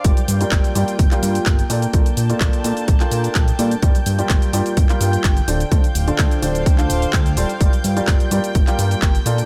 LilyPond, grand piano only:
\new Staff \with { instrumentName = "Grand piano" } { \time 4/4 \key g \minor \tempo 4 = 127 <g f' g' bes' d''>16 r8 <g f' g' bes' d''>8. <g f' g' bes' d''>16 r8 <g f' g' bes' f''>8. <bes bes'>16 r16 <bes f' a' bes' d''>16 r16 | <bes f' a' bes' d''>16 r8 <bes f' a' bes' d''>8. <bes f' a' bes' d''>16 r8 <bes f' a' bes' f''>8. <bes a' bes' g''>16 r16 <g f' a' bes' d''>16 r16 | <g f' g' bes' d''>16 r8 <g f' g' bes' d''>8. <g f' g' bes' d''>16 r8 <g f' g' bes' f''>8. <d g' bes' g''>16 r16 <d f' a' c'' d''>16 r16 | <d f' a' c'' d''>16 r8 <d f' a' c'' d''>8. <d f' a' c'' d''>16 r8 <d f' a' c'' f''>8. <d f' a' c''>16 r16 <g f' a' c'' d''>16 r16 |
<g f' g' bes' d''>16 r8 <g f' g' bes' d''>8. <g f' g' bes' d''>16 r8 <g f' g' bes' f''>8. <bes f' g' bes' g''>16 r16 <bes f' a' bes' d''>16 r16 | }